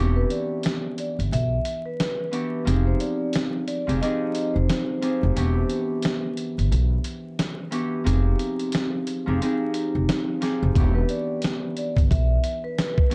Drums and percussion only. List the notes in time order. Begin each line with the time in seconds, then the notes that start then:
0.30 closed hi-hat
0.63 snare, closed hi-hat
0.98 closed hi-hat
1.20 closed hi-hat
1.33 closed hi-hat
1.65 closed hi-hat
2.00 snare, closed hi-hat
2.33 closed hi-hat
2.67 closed hi-hat
3.00 closed hi-hat
3.33 snare, closed hi-hat
3.68 closed hi-hat
3.89 closed hi-hat
4.03 closed hi-hat
4.35 closed hi-hat
4.69 snare, closed hi-hat
5.02 closed hi-hat
5.37 closed hi-hat
5.70 closed hi-hat
6.02 snare, closed hi-hat
6.37 closed hi-hat
6.59 closed hi-hat
6.72 closed hi-hat
7.04 closed hi-hat
7.39 snare, closed hi-hat
7.72 closed hi-hat
8.07 closed hi-hat
8.39 closed hi-hat
8.59 closed hi-hat
8.72 snare, closed hi-hat
9.07 closed hi-hat
9.42 closed hi-hat
9.74 closed hi-hat
10.09 snare, closed hi-hat
10.42 snare, closed hi-hat
10.75 kick, closed hi-hat
11.09 closed hi-hat
11.42 snare, closed hi-hat
11.77 closed hi-hat
11.97 kick, closed hi-hat
12.11 kick, closed hi-hat
12.44 closed hi-hat
12.78 snare, closed hi-hat
12.98 kick
13.11 closed hi-hat